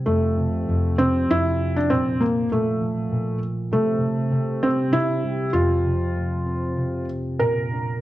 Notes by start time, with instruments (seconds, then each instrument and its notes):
Already playing: harp C3 G3 A#3
0.06 harp F2, felt piano A3
0.38 harp C3
0.69 harp F2
0.98 harp C3, felt piano C4
1.30 harp F2, felt piano E4
1.76 felt piano D4
1.90 harp A#2, felt piano C4
2.20 harp F3, felt piano A#3
2.51 harp A#2, felt piano A3
2.81 harp F3
3.12 harp A#2
3.71 harp C3, felt piano A3
4.00 harp C3
4.32 harp C3
4.63 harp G3, felt piano C4
4.93 harp C3, felt piano E4
5.24 harp G3
5.53 harp F2, felt piano F4
5.84 harp C3
6.16 harp A3
6.46 harp C4
6.77 harp C3
7.39 harp A#2, felt piano A#4
7.72 harp D4